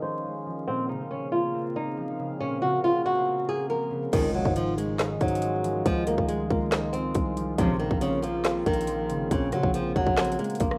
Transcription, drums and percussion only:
4.13 kick loud
4.13 closed hi-hat medium
4.13 crash loud
4.45 kick loud
4.56 closed hi-hat medium
4.78 closed hi-hat medium
4.99 snare loud
4.99 clap medium
4.99 closed hi-hat medium
5.21 kick loud
5.21 closed hi-hat soft
5.28 closed hi-hat medium
5.35 closed hi-hat medium
5.42 closed hi-hat medium
5.64 closed hi-hat medium
5.86 kick loud
5.86 closed hi-hat medium
6.07 closed hi-hat medium
6.18 kick loud
6.29 closed hi-hat medium
6.51 kick loud
6.72 snare loud
6.72 clap medium
6.72 closed hi-hat medium
6.94 closed hi-hat medium
7.15 kick loud
7.15 closed hi-hat medium
7.37 closed hi-hat medium
7.58 kick loud
7.58 closed hi-hat loud
7.91 kick loud
8.01 closed hi-hat medium
8.24 closed hi-hat medium
8.45 snare loud
8.45 clap medium
8.45 closed hi-hat medium
8.66 kick loud
8.66 closed hi-hat soft
8.74 closed hi-hat medium
8.81 closed hi-hat medium
8.87 closed hi-hat medium
9.10 closed hi-hat medium
9.31 kick loud
9.31 closed hi-hat medium
9.52 cross-stick medium
9.52 closed hi-hat medium
9.63 kick loud
9.74 closed hi-hat medium
9.96 kick loud
10.07 kick loud
10.17 snare loud
10.17 clap medium
10.17 closed hi-hat soft
10.25 closed hi-hat medium
10.32 closed hi-hat medium
10.39 closed hi-hat soft
10.44 closed hi-hat soft
10.50 closed hi-hat medium
10.55 closed hi-hat medium
10.60 kick loud
10.60 closed hi-hat medium
10.71 cross-stick loud

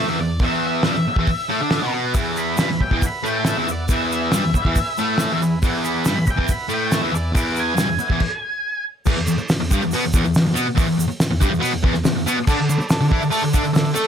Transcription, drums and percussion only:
0.07 snare soft
0.40 kick loud
0.40 open hi-hat medium
0.83 snare loud
0.83 open hi-hat medium
0.94 snare soft
1.16 kick medium
1.27 kick loud
1.27 open hi-hat medium
1.71 snare loud
1.71 open hi-hat medium
2.14 kick loud
2.14 open hi-hat medium
2.14 shaker medium
2.36 shaker medium
2.57 snare loud
2.57 open hi-hat medium
2.57 shaker medium
2.71 snare soft
2.81 kick medium
2.91 kick medium
3.02 kick loud
3.02 open hi-hat medium
3.02 shaker medium
3.26 shaker medium
3.45 snare loud
3.45 open hi-hat medium
3.45 shaker medium
3.69 shaker medium
3.88 kick loud
3.88 open hi-hat medium
3.88 shaker loud
4.12 shaker medium
4.32 snare loud
4.32 open hi-hat medium
4.32 shaker loud
4.54 kick medium
4.54 shaker medium
4.65 kick medium
4.76 kick medium
4.76 open hi-hat medium
4.76 shaker medium
4.98 shaker medium
5.18 snare loud
5.18 open hi-hat medium
5.18 shaker loud
5.42 shaker medium
5.63 kick loud
5.63 open hi-hat medium
5.63 shaker medium
5.85 shaker medium
6.05 snare loud
6.05 open hi-hat medium
6.05 shaker loud
6.27 kick medium
6.27 shaker medium
6.39 kick medium
6.48 kick loud
6.48 open hi-hat medium
6.48 shaker loud
6.69 shaker medium
6.92 snare loud
6.92 open hi-hat medium
6.92 shaker medium
7.15 shaker medium
7.35 kick loud
7.35 open hi-hat medium
7.35 shaker loud
7.56 shaker medium
7.78 snare loud
7.78 open hi-hat medium
7.78 shaker loud
7.99 shaker medium
8.10 kick medium
8.20 kick loud
8.20 crash loud
9.06 kick loud
9.06 crash loud
9.06 shaker medium
9.27 shaker medium
9.38 shaker soft
9.48 snare loud
9.48 open hi-hat medium
9.48 shaker medium
9.71 kick medium
9.71 shaker medium
9.82 shaker soft
9.91 open hi-hat medium
9.91 shaker medium
10.13 kick medium
10.13 shaker medium
10.25 shaker soft
10.34 snare loud
10.34 open hi-hat medium
10.34 shaker medium
10.56 shaker loud
10.78 kick loud
10.78 open hi-hat medium
10.78 shaker medium
11.00 shaker medium
11.11 shaker soft
11.20 snare loud
11.20 open hi-hat medium
11.20 shaker medium
11.42 kick medium
11.42 shaker medium
11.54 shaker soft
11.62 open hi-hat medium
11.62 shaker medium
11.84 kick medium
11.94 snare soft
11.94 shaker soft
12.05 snare loud
12.05 open hi-hat medium
12.05 shaker medium
12.27 shaker loud
12.47 kick loud
12.47 crash loud
12.47 shaker medium
12.70 shaker medium
12.81 shaker soft
12.89 snare loud
12.89 open hi-hat medium
12.89 shaker medium
13.12 kick medium
13.22 shaker soft
13.32 open hi-hat medium
13.32 shaker medium
13.54 kick medium
13.54 shaker medium
13.64 shaker soft
13.75 snare loud
13.75 open hi-hat medium
13.75 shaker medium
13.95 shaker medium

